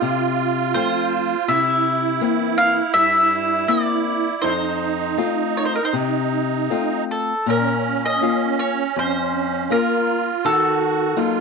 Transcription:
0.00 0.73 C3 medium
0.00 1.52 F4 loud
0.00 0.71 A4 medium
0.74 1.34 F3 soft
0.74 1.34 A3 soft
0.74 1.34 C4 medium
0.74 1.44 C5 medium
1.48 2.19 C3 medium
1.48 4.53 E4 loud
1.48 2.61 E5 loud
2.21 2.80 E3 medium
2.21 2.80 A#3 medium
2.21 2.80 C4 soft
2.58 2.93 F5 loud
2.94 3.66 G2 medium
2.94 3.70 E5 loud
3.68 4.28 A#3 medium
3.68 4.28 C4 soft
3.68 4.29 E4 medium
3.68 4.41 D5 medium
4.42 5.16 F2 medium
4.42 7.04 D#4 loud
4.42 5.52 C5 medium
5.17 5.78 A3 soft
5.17 5.78 C4 soft
5.17 5.78 F4 medium
5.57 5.65 C#5 medium
5.65 5.75 C5 medium
5.76 5.84 A#4 medium
5.85 5.94 C5 medium
5.93 6.68 C3 medium
6.70 7.32 A3 soft
6.70 7.32 C4 soft
6.70 7.32 F4 medium
7.11 7.46 A4 medium
7.46 8.20 A#2 medium
7.46 9.78 C#4 loud
7.46 8.05 A#4 medium
8.06 8.59 D#5 medium
8.21 8.82 A#3 soft
8.21 8.82 C#4 soft
8.21 8.82 F4 medium
8.59 8.98 C#5 medium
8.96 9.69 F2 medium
8.96 9.72 C5 medium
9.70 10.29 A#3 soft
9.70 10.30 C#4 soft
9.70 10.30 F4 medium
9.70 10.47 F4 medium
9.70 10.47 A#4 medium
10.44 11.16 D#3 medium
10.44 11.20 F#4 loud
10.44 11.40 A4 medium
11.16 11.40 F#3 medium
11.16 11.40 A#3 soft
11.16 11.40 D#4 soft
11.16 11.40 F4 loud

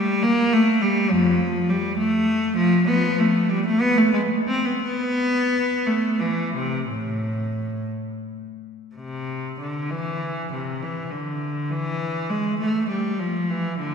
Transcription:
0.00 0.22 G3 medium
0.23 0.52 A#3 loud
0.53 0.81 A3 medium
0.82 1.10 G3 medium
1.11 1.64 F2 medium
1.11 1.68 F3 medium
1.69 1.98 G3 medium
1.98 2.56 A3 medium
2.57 2.86 F3 medium
2.88 3.16 F3 medium
2.88 3.18 B3 medium
3.19 3.50 A3 medium
3.50 3.65 G3 medium
3.67 3.81 A3 medium
3.81 3.97 B3 loud
3.98 4.14 A3 medium
4.13 4.21 G#3 medium
4.47 4.64 C4 medium
4.65 4.81 B3 medium
4.82 5.84 B3 medium
5.87 6.21 A3 medium
6.20 6.55 E3 medium
6.55 6.89 C3 medium
6.89 7.88 A2 medium
8.95 9.55 C3 medium
9.60 9.89 D3 medium
9.91 10.52 E3 medium
10.53 10.82 C3 medium
10.83 11.12 E3 medium
11.11 11.70 D3 medium
11.70 12.30 E3 medium
12.30 12.60 G#3 medium
12.60 12.89 A3 medium
12.90 13.19 G3 medium
13.19 13.50 F3 medium
13.50 13.80 E3 medium
13.79 13.95 D3 medium

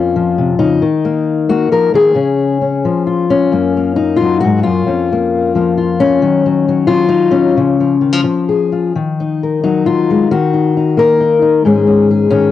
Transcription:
0.00 0.82 F2 medium
0.00 0.41 A#3 soft
0.00 0.58 C#4 soft
0.00 0.60 F4 medium
0.15 0.79 F3 medium
0.38 0.58 C3 medium
0.59 0.81 C#3 medium
0.59 1.92 D#4 medium
0.82 1.70 D#3 medium
1.05 1.49 A#3 soft
1.49 2.13 A#3 medium
1.49 1.71 F#4 medium
1.72 1.93 F3 medium
1.72 1.93 A#4 medium
1.94 2.15 D#3 soft
1.94 3.06 G#4 medium
2.15 2.83 C#3 medium
2.15 2.61 C#4 soft
2.61 3.30 C#4 soft
2.85 3.55 F3 medium
3.07 4.16 F4 soft
3.30 3.96 C#4 medium
3.52 4.43 F#2 medium
3.52 3.76 A#3 soft
3.77 5.12 A#3 soft
3.96 4.65 D#4 medium
4.17 4.40 F4 medium
4.22 4.86 F#3 medium
4.41 4.66 G#2 medium
4.41 4.63 F#4 medium
4.63 4.86 F#2 medium
4.63 5.76 F4 medium
4.87 6.21 F2 medium
4.87 6.00 C#4 soft
5.12 5.56 A#3 soft
5.55 6.19 F3 medium
5.55 6.20 A#3 soft
5.77 6.22 F4 soft
6.00 7.08 C#4 medium
6.22 7.53 D#3 medium
6.22 6.45 F#3 soft
6.46 6.67 F#3 soft
6.68 6.88 F#3 soft
6.87 7.53 F#3 medium
6.87 7.55 F4 loud
7.08 7.54 D#4 medium
7.31 8.93 C#4 medium
7.57 8.25 C#3 medium
7.57 7.79 F3 soft
7.80 8.01 F3 soft
8.01 8.12 D#3 soft
8.12 8.23 F3 soft
8.24 8.92 F3 medium
8.49 8.92 G#4 soft
8.72 8.92 F4 soft
8.96 10.29 D#3 medium
9.20 9.63 D#4 soft
9.43 9.86 A#4 soft
9.64 10.28 F#3 medium
9.64 10.31 D#4 medium
9.86 10.31 F4 medium
10.10 10.32 G#3 soft
10.31 12.30 D#3 medium
10.31 10.97 F#4 medium
10.53 10.77 D#4 soft
10.77 11.20 D#4 soft
10.97 11.61 A#3 medium
10.97 11.64 A#4 medium
11.21 11.42 D#4 soft
11.42 11.67 D#4 soft
11.65 12.52 G#2 medium
11.65 12.52 G#3 soft
11.65 11.87 C#4 soft
11.65 12.11 G#4 soft
11.87 12.30 C#4 soft
12.11 12.50 G#4 soft
12.30 12.52 D#3 medium
12.30 12.52 C#4 medium

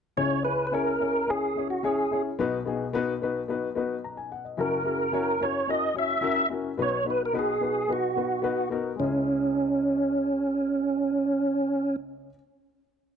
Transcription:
0.17 2.35 C#2 medium
0.17 2.35 C#3 medium
0.17 0.35 C#4 medium
0.17 0.35 E4 medium
0.17 0.35 G#4 medium
0.17 0.43 C#5 loud
0.17 0.36 C#5 medium
0.44 0.62 C#4 medium
0.44 0.63 E4 medium
0.44 0.63 G#4 medium
0.44 0.66 B4 medium
0.44 0.63 C#5 medium
0.67 0.73 B4 medium
0.71 0.90 C#4 medium
0.71 0.90 E4 medium
0.71 0.90 G#4 medium
0.71 1.31 A#4 medium
0.71 0.91 C#5 medium
1.00 1.18 C#4 medium
1.00 1.18 E4 medium
1.00 1.19 G#4 medium
1.00 1.19 C#5 medium
1.27 1.45 C#4 medium
1.27 1.46 E4 medium
1.27 1.46 G#4 medium
1.27 1.68 G#4 medium
1.27 1.46 C#5 medium
1.56 1.73 C#4 medium
1.56 1.74 E4 medium
1.56 1.74 G#4 medium
1.56 1.75 C#5 medium
1.70 1.84 F#4 medium
1.83 2.01 C#4 medium
1.83 2.01 E4 medium
1.83 2.22 G#4 medium
1.83 2.02 G#4 medium
1.83 2.02 C#5 loud
2.11 2.29 C#4 medium
2.11 2.29 E4 medium
2.11 2.29 G#4 medium
2.11 2.30 C#5 medium
2.39 4.55 B1 medium
2.39 4.56 B2 medium
2.39 2.56 B3 loud
2.39 2.57 D#4 medium
2.39 2.57 F#4 medium
2.39 2.57 B4 loud
2.65 2.84 B3 medium
2.65 2.84 D#4 medium
2.65 2.84 F#4 medium
2.65 2.84 G#4 medium
2.93 3.11 B3 loud
2.93 3.12 D#4 medium
2.93 3.12 F#4 medium
2.93 3.12 B4 loud
3.22 3.39 B3 medium
3.22 3.39 D#4 medium
3.22 3.40 F#4 medium
3.22 3.40 B4 medium
3.48 3.66 B3 medium
3.48 3.67 D#4 medium
3.48 3.67 F#4 medium
3.48 3.67 B4 medium
3.75 3.94 B3 medium
3.75 3.94 D#4 medium
3.75 3.94 F#4 medium
3.75 3.95 B4 medium
4.04 4.17 A#5 medium
4.17 4.31 G#5 medium
4.32 4.45 F#5 medium
4.45 4.71 D#5 medium
4.57 6.75 F#1 medium
4.57 6.75 F#2 medium
4.57 4.76 C#4 medium
4.57 4.76 E4 medium
4.57 4.77 F#4 medium
4.57 4.77 A#4 medium
4.57 5.45 A#4 medium
4.84 5.03 C#4 medium
4.84 5.03 E4 medium
4.84 5.04 F#4 medium
4.84 5.04 G#4 medium
5.12 5.31 C#4 medium
5.12 5.31 E4 medium
5.12 5.31 F#4 medium
5.12 5.32 C#5 medium
5.40 5.58 C#4 medium
5.40 5.59 E4 medium
5.40 5.59 F#4 medium
5.40 5.59 A#4 medium
5.40 5.71 C#5 medium
5.68 5.86 C#4 medium
5.68 5.87 E4 medium
5.68 5.87 F#4 medium
5.68 5.87 A#4 medium
5.68 5.95 D#5 medium
5.95 6.13 C#4 medium
5.95 6.14 E4 medium
5.95 6.14 F#4 medium
5.95 6.14 C#5 medium
5.95 6.49 E5 medium
6.21 6.40 C#4 medium
6.21 6.41 E4 medium
6.21 6.41 F#4 medium
6.21 6.41 A#4 loud
6.50 6.68 C#4 medium
6.50 6.69 E4 medium
6.50 6.69 F#4 medium
6.50 6.69 A#4 medium
6.78 8.95 B1 medium
6.78 8.95 B2 medium
6.78 6.96 B3 medium
6.78 6.96 D#4 medium
6.78 6.96 F#4 medium
6.78 6.97 B4 loud
6.82 7.06 C#5 loud
7.05 7.23 B3 medium
7.05 7.24 D#4 medium
7.05 7.24 F#4 medium
7.05 7.25 B4 medium
7.10 7.23 B4 medium
7.25 7.37 A#4 medium
7.33 7.51 B3 medium
7.33 7.51 D#4 medium
7.33 7.52 F#4 medium
7.33 7.52 B4 loud
7.39 7.93 G#4 medium
7.60 7.79 B3 medium
7.60 7.79 D#4 medium
7.60 7.79 F#4 medium
7.60 7.80 B4 medium
7.88 8.06 B3 medium
7.88 8.07 D#4 medium
7.88 8.07 F#4 medium
7.88 8.07 B4 medium
7.93 8.69 F#4 medium
8.16 8.34 B3 medium
8.16 8.34 D#4 medium
8.16 8.35 F#4 medium
8.16 8.35 B4 medium
8.42 8.61 B3 medium
8.42 8.61 D#4 medium
8.42 8.62 F#4 medium
8.42 8.62 B4 loud
8.70 8.89 B3 medium
8.70 8.89 D#4 medium
8.70 8.89 F#4 medium
8.70 8.90 A#4 medium
8.96 12.29 C#2 medium
8.96 12.25 G#3 medium
8.96 12.27 C#4 medium
8.96 11.96 C#4 medium
9.01 12.30 E4 medium
9.01 12.33 G#4 medium

